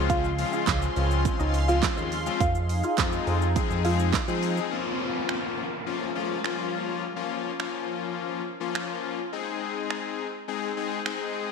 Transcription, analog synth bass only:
0.00 0.44 C#2 loud
0.67 0.88 C#2 loud
0.96 1.28 C#2 loud
1.39 1.82 C#2 medium
1.97 2.29 D#2 medium
2.41 2.83 F2 loud
2.98 3.19 F2 loud
3.27 3.59 F2 loud
3.70 4.13 F2 medium
4.28 4.60 F3 medium

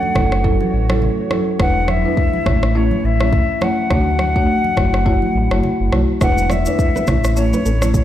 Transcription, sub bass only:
0.15 0.61 F#1 loud
0.73 1.09 A1 medium
1.60 2.05 E1 loud
2.46 2.92 A1 loud
3.04 3.40 A1 loud
3.90 4.36 D2 loud
4.77 5.23 F#1 loud
5.35 5.48 A1 medium
5.51 5.61 F#1 medium
5.80 5.90 F#1 loud
5.92 6.06 B1 medium
6.21 6.67 E1 loud
7.08 7.53 A1 loud
7.65 8.02 A1 medium

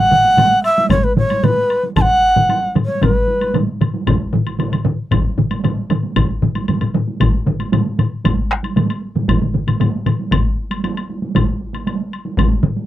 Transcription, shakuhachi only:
0.00 0.63 F#5 loud
0.64 0.89 E5 medium
0.90 1.05 C#5 medium
1.04 1.17 B4 medium
1.17 1.46 C#5 medium
1.44 1.83 B4 medium
1.96 2.02 A5 loud
2.01 2.71 F#5 loud
2.85 3.05 C#5 medium
3.04 3.55 B4 medium

